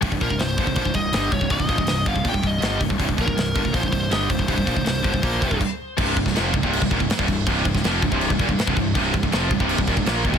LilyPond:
<<
  \new Staff \with { instrumentName = "Lead electric guitar" } { \time 4/4 \key c \minor \tempo 4 = 162 r8 bes'8 c''4 c''8 ees''4 des''8 | ees''4. f''8 g''8 ees''4 r8 | r8 bes'4. c''8 c''8 ees''8 c''8~ | c''2. r4 |
r1 | r1 | r1 | }
  \new Staff \with { instrumentName = "Distorted electric guitar" } { \clef bass \time 4/4 \key c \minor <c, g,>16 <c, g,>16 <bes, f>16 <c, g,>16 <c, g,>8 <g, d>16 <c, g,>16 <bes, f>16 <c, g,>16 <c, g,>8 <g, d g>8 <c, g,>16 <c, g,>16 | <c, g,>16 <c, g,>16 <bes, f>16 <c, g,>16 <c, g,>8 <g, d>16 <c, g,>16 <bes, f>16 <c, g,>16 <c, g,>8 <g, d g>8 <c, g,>16 <c, g,>16 | <c, g,>16 <c, g,>16 <bes, f>16 <c, g,>16 <c, g,>8 <g, d>16 <c, g,>16 <bes, f>16 <c, g,>16 <c, g,>8 <g, d g>8 <c, g,>16 <c, g,>16 | <c, g,>16 <c, g,>16 <bes, f>16 <c, g,>16 <c, g,>8 <g, d>16 <c, g,>16 <bes, f bes>8 <f, c>16 <c, g,>16 r4 |
<c, g, c>8 <c, g,>16 <c, g,>16 <f, c f>8 <c, g,>16 <c, g, c>8 <c, g,>16 <ees, bes,>16 <c, g,>16 r16 <c, g,>16 <c, g,>8 | <c, g, c>8 <c, g,>16 <c, g,>16 <f, c f>8 <c, g,>16 <c, g, c>8 <c, g,>16 <ees, bes,>16 <c, g,>16 r16 <c, g,>16 <c, g,>8 | <c, g, c>8 <c, g,>16 <c, g,>16 <f, c f>8 <c, g,>16 <c, g, c>8 <c, g,>16 <ees, bes,>16 <c, g,>16 <bes, f bes>8 <ees, bes,>16 <f, c>16 | }
  \new Staff \with { instrumentName = "Distorted electric guitar" } { \clef bass \time 4/4 \key c \minor <c, g,>16 <c, g,>16 <bes, f>16 <c, g,>16 <c, g,>8 <g, d>16 <c, g,>16 <bes, f>16 <c, g,>16 <c, g,>8 <g, d g>8 <c, g,>16 <c, g,>16 | <c, g,>16 <c, g,>16 <bes, f>16 <c, g,>16 <c, g,>8 <g, d>16 <c, g,>16 <bes, f>16 <c, g,>16 <c, g,>8 <g, d g>8 <c, g,>16 <c, g,>16 | <c, g,>16 <c, g,>16 <bes, f>16 <c, g,>16 <c, g,>8 <g, d>16 <c, g,>16 <bes, f>16 <c, g,>16 <c, g,>8 <g, d g>8 <c, g,>16 <c, g,>16 | <c, g,>16 <c, g,>16 <bes, f>16 <c, g,>16 <c, g,>8 <g, d>16 <c, g,>16 <bes, f bes>8 <f, c>16 <c, g,>16 r4 |
<c, g, c>8 <c, g,>16 <c, g,>16 <f, c f>8 <c, g,>16 <c, g, c>8 <c, g,>16 <ees, bes,>16 <c, g,>16 r16 <c, g,>16 <c, g,>8 | <c, g, c>8 <c, g,>16 <c, g,>16 <f, c f>8 <c, g,>16 <c, g, c>8 <c, g,>16 <ees, bes,>16 <c, g,>16 r16 <c, g,>16 <c, g,>8 | <c, g, c>8 <c, g,>16 <c, g,>16 <f, c f>8 <c, g,>16 <c, g, c>8 <c, g,>16 <ees, bes,>16 <c, g,>16 <bes, f bes>8 <ees, bes,>16 <f, c>16 | }
  \new Staff \with { instrumentName = "Distorted electric guitar" } { \clef bass \time 4/4 \key c \minor r1 | r1 | r1 | r1 |
<c, g, c>8 <c, g,>16 <c, g,>16 <f, c f>8 <c, g,>16 <c, g, c>8 <c, g,>16 <ees, bes,>16 <c, g,>16 r16 <c, g,>16 <c, g,>8 | <c, g, c>8 <c, g,>16 <c, g,>16 <f, c f>8 <c, g,>16 <c, g, c>8 <c, g,>16 <ees, bes,>16 <c, g,>16 r16 <c, g,>16 <c, g,>8 | <c, g, c>8 <c, g,>16 <c, g,>16 <f, c f>8 <c, g,>16 <c, g, c>8 <c, g,>16 <ees, bes,>16 <c, g,>16 <bes, f bes>8 <ees, bes,>16 <f, c>16 | }
  \new Staff \with { instrumentName = "Picked electric bass" } { \clef bass \time 4/4 \key c \minor c,,16 c,,16 bes,,16 c,,16 c,,8 g,,16 c,,16 bes,,16 c,,16 c,,8 g,,8 c,,16 c,,16 | c,,16 c,,16 bes,,16 c,,16 c,,8 g,,16 c,,16 bes,,16 c,,16 c,,8 g,,8 c,,16 c,,16 | c,,16 c,,16 bes,,16 c,,16 c,,8 g,,16 c,,16 bes,,16 c,,16 c,,8 g,,8 c,,16 c,,16 | c,,16 c,,16 bes,,16 c,,16 c,,8 g,,16 c,,16 bes,,8 f,,16 c,,16 r4 |
c,,8 c,,16 c,,16 f,,8 c,,16 c,,8 c,,16 ees,,16 c,,16 r16 c,,16 c,,8 | c,,8 c,,16 c,,16 f,,8 c,,16 c,,8 c,,16 ees,,16 c,,16 r16 c,,16 c,,8 | c,,8 c,,16 c,,16 f,,8 c,,16 c,,8 c,,16 ees,,16 c,,16 bes,,8 ees,,16 f,,16 | }
  \new DrumStaff \with { instrumentName = "Drums" } \drummode { \time 4/4 <hho bd>16 bd16 <hho bd>16 bd16 <hho sn>8 <hho bd>16 bd16 <hho bd>16 bd16 <hho bd>8 <hho sn>8 <hho bd>16 bd16 | <hho bd>16 bd16 <hho bd>16 bd16 <hho sn>8 <hho bd>16 bd16 <hho bd>16 bd16 <hho bd>8 <hho sn>8 <hho bd>16 bd16 | <hho bd>16 bd16 <hho bd>16 bd16 <hho sn>8 <hho bd>16 bd16 <hho bd>16 bd16 <hho bd>8 <hho sn>8 <hho bd>16 bd16 | <hho bd>16 bd16 <hho bd>16 bd16 <hho sn>8 <hho bd>16 bd16 <hho bd>8 <hho bd>16 bd16 <cymc bd>4 |
<cymc bd>8 <cymc bd>16 <bd sn>16 <cymc sn>8 <cymc bd>16 bd16 cymc16 bd16 <cymc bd>16 bd16 <cymc sn>16 bd16 <cymc bd>8 | <cymc bd>8 <cymc bd>16 <bd sn>16 <cymc sn>8 <cymc bd>16 bd16 cymc16 bd16 <cymc bd>16 bd16 <cymc sn>16 bd16 <cymc bd>8 | <cymc bd>8 <cymc bd>16 bd16 <cymc sn>8 <cymc bd>16 bd16 cymc16 bd16 <cymc bd>16 bd16 <cymc sn>8 <cymc bd>16 bd16 | }
>>